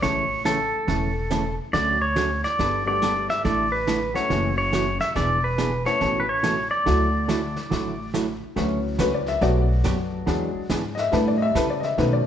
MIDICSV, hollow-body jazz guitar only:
0, 0, Header, 1, 2, 480
1, 0, Start_track
1, 0, Key_signature, 2, "major"
1, 0, Tempo, 426743
1, 30, Time_signature, 4, 2, 24, 8
1, 13798, End_track
2, 0, Start_track
2, 0, Title_t, "Hollow-body jazz guitar"
2, 0, Program_c, 0, 26
2, 25, Note_on_c, 0, 52, 50
2, 26, Note_on_c, 0, 49, 55
2, 29, Note_on_c, 0, 57, 54
2, 30, Note_on_c, 0, 61, 52
2, 36, Note_on_c, 0, 69, 66
2, 276, Note_off_c, 0, 49, 0
2, 276, Note_off_c, 0, 52, 0
2, 278, Note_off_c, 0, 57, 0
2, 278, Note_off_c, 0, 61, 0
2, 281, Note_off_c, 0, 69, 0
2, 506, Note_on_c, 0, 49, 70
2, 511, Note_on_c, 0, 52, 68
2, 511, Note_on_c, 0, 57, 73
2, 513, Note_on_c, 0, 61, 79
2, 515, Note_on_c, 0, 69, 74
2, 640, Note_off_c, 0, 49, 0
2, 642, Note_off_c, 0, 52, 0
2, 642, Note_off_c, 0, 57, 0
2, 643, Note_off_c, 0, 61, 0
2, 644, Note_off_c, 0, 69, 0
2, 985, Note_on_c, 0, 49, 49
2, 987, Note_on_c, 0, 52, 55
2, 992, Note_on_c, 0, 57, 64
2, 993, Note_on_c, 0, 61, 58
2, 998, Note_on_c, 0, 69, 63
2, 1236, Note_off_c, 0, 49, 0
2, 1237, Note_off_c, 0, 52, 0
2, 1240, Note_off_c, 0, 57, 0
2, 1240, Note_off_c, 0, 61, 0
2, 1243, Note_off_c, 0, 69, 0
2, 1470, Note_on_c, 0, 49, 69
2, 1474, Note_on_c, 0, 52, 77
2, 1476, Note_on_c, 0, 57, 70
2, 1479, Note_on_c, 0, 61, 75
2, 1479, Note_on_c, 0, 69, 75
2, 1602, Note_off_c, 0, 49, 0
2, 1604, Note_off_c, 0, 52, 0
2, 1605, Note_off_c, 0, 57, 0
2, 1607, Note_off_c, 0, 61, 0
2, 1607, Note_off_c, 0, 69, 0
2, 1952, Note_on_c, 0, 50, 59
2, 1955, Note_on_c, 0, 54, 51
2, 1957, Note_on_c, 0, 57, 56
2, 1960, Note_on_c, 0, 66, 58
2, 1963, Note_on_c, 0, 61, 60
2, 2200, Note_off_c, 0, 50, 0
2, 2202, Note_off_c, 0, 54, 0
2, 2203, Note_off_c, 0, 57, 0
2, 2204, Note_off_c, 0, 66, 0
2, 2206, Note_off_c, 0, 61, 0
2, 2427, Note_on_c, 0, 50, 73
2, 2431, Note_on_c, 0, 54, 67
2, 2435, Note_on_c, 0, 57, 73
2, 2435, Note_on_c, 0, 61, 67
2, 2437, Note_on_c, 0, 66, 73
2, 2561, Note_off_c, 0, 50, 0
2, 2563, Note_off_c, 0, 54, 0
2, 2565, Note_off_c, 0, 57, 0
2, 2565, Note_off_c, 0, 61, 0
2, 2566, Note_off_c, 0, 66, 0
2, 2918, Note_on_c, 0, 55, 58
2, 2918, Note_on_c, 0, 59, 59
2, 2923, Note_on_c, 0, 62, 55
2, 2927, Note_on_c, 0, 69, 58
2, 3164, Note_off_c, 0, 55, 0
2, 3164, Note_off_c, 0, 59, 0
2, 3167, Note_off_c, 0, 62, 0
2, 3168, Note_off_c, 0, 69, 0
2, 3404, Note_on_c, 0, 55, 71
2, 3405, Note_on_c, 0, 59, 77
2, 3408, Note_on_c, 0, 62, 67
2, 3413, Note_on_c, 0, 69, 76
2, 3530, Note_off_c, 0, 55, 0
2, 3531, Note_off_c, 0, 59, 0
2, 3532, Note_off_c, 0, 62, 0
2, 3534, Note_off_c, 0, 69, 0
2, 3872, Note_on_c, 0, 50, 57
2, 3877, Note_on_c, 0, 57, 61
2, 3879, Note_on_c, 0, 62, 51
2, 3882, Note_on_c, 0, 64, 61
2, 3883, Note_on_c, 0, 69, 53
2, 4121, Note_off_c, 0, 50, 0
2, 4124, Note_off_c, 0, 57, 0
2, 4125, Note_off_c, 0, 62, 0
2, 4126, Note_off_c, 0, 64, 0
2, 4127, Note_off_c, 0, 69, 0
2, 4354, Note_on_c, 0, 50, 73
2, 4359, Note_on_c, 0, 57, 77
2, 4360, Note_on_c, 0, 62, 76
2, 4361, Note_on_c, 0, 64, 78
2, 4365, Note_on_c, 0, 69, 81
2, 4485, Note_off_c, 0, 50, 0
2, 4488, Note_off_c, 0, 57, 0
2, 4489, Note_off_c, 0, 62, 0
2, 4489, Note_off_c, 0, 64, 0
2, 4491, Note_off_c, 0, 69, 0
2, 4833, Note_on_c, 0, 49, 61
2, 4837, Note_on_c, 0, 52, 61
2, 4840, Note_on_c, 0, 57, 65
2, 4843, Note_on_c, 0, 61, 64
2, 4844, Note_on_c, 0, 66, 63
2, 5082, Note_off_c, 0, 49, 0
2, 5084, Note_off_c, 0, 52, 0
2, 5085, Note_off_c, 0, 57, 0
2, 5087, Note_off_c, 0, 61, 0
2, 5087, Note_off_c, 0, 66, 0
2, 5313, Note_on_c, 0, 49, 68
2, 5319, Note_on_c, 0, 52, 80
2, 5321, Note_on_c, 0, 57, 74
2, 5321, Note_on_c, 0, 61, 77
2, 5325, Note_on_c, 0, 66, 74
2, 5445, Note_off_c, 0, 49, 0
2, 5448, Note_off_c, 0, 52, 0
2, 5449, Note_off_c, 0, 57, 0
2, 5449, Note_off_c, 0, 61, 0
2, 5451, Note_off_c, 0, 66, 0
2, 5800, Note_on_c, 0, 52, 54
2, 5802, Note_on_c, 0, 59, 50
2, 5805, Note_on_c, 0, 62, 54
2, 5806, Note_on_c, 0, 68, 58
2, 6046, Note_off_c, 0, 52, 0
2, 6046, Note_off_c, 0, 59, 0
2, 6048, Note_off_c, 0, 62, 0
2, 6048, Note_off_c, 0, 68, 0
2, 6278, Note_on_c, 0, 52, 67
2, 6281, Note_on_c, 0, 59, 72
2, 6285, Note_on_c, 0, 62, 74
2, 6291, Note_on_c, 0, 68, 79
2, 6408, Note_off_c, 0, 52, 0
2, 6409, Note_off_c, 0, 59, 0
2, 6412, Note_off_c, 0, 62, 0
2, 6414, Note_off_c, 0, 68, 0
2, 6760, Note_on_c, 0, 52, 57
2, 6761, Note_on_c, 0, 47, 54
2, 6766, Note_on_c, 0, 69, 69
2, 6767, Note_on_c, 0, 57, 60
2, 6767, Note_on_c, 0, 61, 59
2, 7005, Note_off_c, 0, 52, 0
2, 7006, Note_off_c, 0, 47, 0
2, 7008, Note_off_c, 0, 69, 0
2, 7009, Note_off_c, 0, 57, 0
2, 7009, Note_off_c, 0, 61, 0
2, 7234, Note_on_c, 0, 47, 72
2, 7234, Note_on_c, 0, 52, 72
2, 7238, Note_on_c, 0, 57, 74
2, 7240, Note_on_c, 0, 61, 72
2, 7242, Note_on_c, 0, 69, 77
2, 7366, Note_off_c, 0, 47, 0
2, 7366, Note_off_c, 0, 52, 0
2, 7368, Note_off_c, 0, 57, 0
2, 7369, Note_off_c, 0, 61, 0
2, 7370, Note_off_c, 0, 69, 0
2, 7713, Note_on_c, 0, 50, 51
2, 7715, Note_on_c, 0, 54, 57
2, 7718, Note_on_c, 0, 57, 58
2, 7721, Note_on_c, 0, 64, 56
2, 7723, Note_on_c, 0, 66, 65
2, 7962, Note_off_c, 0, 50, 0
2, 7963, Note_off_c, 0, 54, 0
2, 7964, Note_off_c, 0, 57, 0
2, 7966, Note_off_c, 0, 64, 0
2, 7967, Note_off_c, 0, 66, 0
2, 8190, Note_on_c, 0, 50, 72
2, 8195, Note_on_c, 0, 54, 66
2, 8196, Note_on_c, 0, 57, 73
2, 8200, Note_on_c, 0, 66, 79
2, 8201, Note_on_c, 0, 64, 71
2, 8324, Note_off_c, 0, 50, 0
2, 8326, Note_off_c, 0, 54, 0
2, 8327, Note_off_c, 0, 57, 0
2, 8329, Note_off_c, 0, 64, 0
2, 8329, Note_off_c, 0, 66, 0
2, 8666, Note_on_c, 0, 50, 57
2, 8674, Note_on_c, 0, 54, 58
2, 8676, Note_on_c, 0, 57, 60
2, 8677, Note_on_c, 0, 64, 56
2, 8681, Note_on_c, 0, 66, 59
2, 8919, Note_off_c, 0, 50, 0
2, 8923, Note_off_c, 0, 54, 0
2, 8923, Note_off_c, 0, 57, 0
2, 8924, Note_off_c, 0, 64, 0
2, 8926, Note_off_c, 0, 66, 0
2, 9153, Note_on_c, 0, 50, 65
2, 9153, Note_on_c, 0, 54, 78
2, 9156, Note_on_c, 0, 57, 77
2, 9159, Note_on_c, 0, 64, 75
2, 9161, Note_on_c, 0, 66, 76
2, 9285, Note_off_c, 0, 50, 0
2, 9286, Note_off_c, 0, 54, 0
2, 9287, Note_off_c, 0, 57, 0
2, 9289, Note_off_c, 0, 64, 0
2, 9290, Note_off_c, 0, 66, 0
2, 9630, Note_on_c, 0, 50, 55
2, 9633, Note_on_c, 0, 54, 50
2, 9636, Note_on_c, 0, 57, 53
2, 9637, Note_on_c, 0, 66, 62
2, 9639, Note_on_c, 0, 61, 54
2, 9881, Note_off_c, 0, 50, 0
2, 9882, Note_off_c, 0, 54, 0
2, 9883, Note_off_c, 0, 57, 0
2, 9884, Note_off_c, 0, 66, 0
2, 9885, Note_off_c, 0, 61, 0
2, 10107, Note_on_c, 0, 50, 69
2, 10110, Note_on_c, 0, 54, 73
2, 10114, Note_on_c, 0, 57, 74
2, 10116, Note_on_c, 0, 61, 77
2, 10117, Note_on_c, 0, 66, 82
2, 10242, Note_off_c, 0, 50, 0
2, 10244, Note_off_c, 0, 54, 0
2, 10246, Note_off_c, 0, 57, 0
2, 10247, Note_off_c, 0, 61, 0
2, 10247, Note_off_c, 0, 66, 0
2, 10588, Note_on_c, 0, 50, 56
2, 10592, Note_on_c, 0, 54, 58
2, 10594, Note_on_c, 0, 59, 62
2, 10595, Note_on_c, 0, 62, 58
2, 10596, Note_on_c, 0, 67, 63
2, 10840, Note_off_c, 0, 50, 0
2, 10841, Note_off_c, 0, 54, 0
2, 10842, Note_off_c, 0, 59, 0
2, 10843, Note_off_c, 0, 62, 0
2, 10843, Note_off_c, 0, 67, 0
2, 11073, Note_on_c, 0, 50, 66
2, 11078, Note_on_c, 0, 54, 68
2, 11079, Note_on_c, 0, 59, 70
2, 11079, Note_on_c, 0, 62, 73
2, 11083, Note_on_c, 0, 67, 82
2, 11205, Note_off_c, 0, 50, 0
2, 11208, Note_off_c, 0, 54, 0
2, 11208, Note_off_c, 0, 59, 0
2, 11208, Note_off_c, 0, 62, 0
2, 11210, Note_off_c, 0, 67, 0
2, 11546, Note_on_c, 0, 52, 50
2, 11549, Note_on_c, 0, 59, 54
2, 11558, Note_on_c, 0, 62, 55
2, 11558, Note_on_c, 0, 68, 64
2, 11798, Note_off_c, 0, 52, 0
2, 11800, Note_off_c, 0, 59, 0
2, 11804, Note_off_c, 0, 62, 0
2, 11804, Note_off_c, 0, 68, 0
2, 12035, Note_on_c, 0, 52, 68
2, 12041, Note_on_c, 0, 59, 73
2, 12046, Note_on_c, 0, 62, 74
2, 12047, Note_on_c, 0, 68, 76
2, 12166, Note_off_c, 0, 52, 0
2, 12169, Note_off_c, 0, 59, 0
2, 12172, Note_off_c, 0, 62, 0
2, 12172, Note_off_c, 0, 68, 0
2, 12513, Note_on_c, 0, 50, 58
2, 12516, Note_on_c, 0, 55, 61
2, 12519, Note_on_c, 0, 62, 58
2, 12522, Note_on_c, 0, 64, 62
2, 12522, Note_on_c, 0, 69, 61
2, 12762, Note_off_c, 0, 50, 0
2, 12763, Note_off_c, 0, 55, 0
2, 12765, Note_off_c, 0, 62, 0
2, 12766, Note_off_c, 0, 64, 0
2, 12766, Note_off_c, 0, 69, 0
2, 12993, Note_on_c, 0, 55, 72
2, 12994, Note_on_c, 0, 50, 73
2, 13000, Note_on_c, 0, 62, 75
2, 13000, Note_on_c, 0, 64, 76
2, 13003, Note_on_c, 0, 69, 75
2, 13125, Note_off_c, 0, 50, 0
2, 13125, Note_off_c, 0, 55, 0
2, 13128, Note_off_c, 0, 62, 0
2, 13128, Note_off_c, 0, 64, 0
2, 13130, Note_off_c, 0, 69, 0
2, 13472, Note_on_c, 0, 47, 52
2, 13479, Note_on_c, 0, 54, 58
2, 13480, Note_on_c, 0, 57, 55
2, 13482, Note_on_c, 0, 66, 65
2, 13485, Note_on_c, 0, 63, 58
2, 13721, Note_off_c, 0, 47, 0
2, 13724, Note_off_c, 0, 54, 0
2, 13725, Note_off_c, 0, 57, 0
2, 13726, Note_off_c, 0, 66, 0
2, 13727, Note_off_c, 0, 63, 0
2, 13798, End_track
0, 0, End_of_file